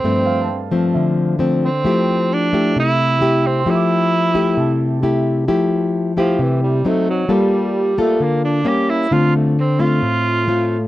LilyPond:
<<
  \new Staff \with { instrumentName = "Grand piano" } { \time 4/4 \key f \major \tempo 4 = 132 r8 f''16 a''4~ a''16 e''4. r8 | r2. r8 g''16 c'''16 | d'''4 r4 a''4. r8 | r1 |
r1 | r1 | }
  \new Staff \with { instrumentName = "Tenor saxophone" } { \time 4/4 \key f \major c'4. r2 c'8~ | c'4 d'4 e'4. c'8 | e'2. r4 | r4. f8 e8 g8 a8 fis8 |
g4. a8 bes8 d'8 g'8 e'8 | f'8 a8 c'8 f'2~ f'8 | }
  \new Staff \with { instrumentName = "Nylon-string guitar" } { \time 4/4 \key f \major << { <f a c'>4 r8 <f a c'>4. <f a c'>8 r8 | <a e' g'>4. <a e' g'>4. <a e' g'>4 | <a e' g'>4. <a e' g'>4. <a e' g'>4 | <a e' g'>4. <a e' g'>4. <fis c' dis'>4 |
<bes f' a'>4. <bes f' a'>4. <g bes des'>4 | <a c' f'>4 r8 <a c' f'>4. <a c' f'>8 r8 | } \\ { g,2 d2 | f2 c2 | f2 c2 | f2 c4 r4 |
g2 d4 r4 | d2 a,2 | } >> }
>>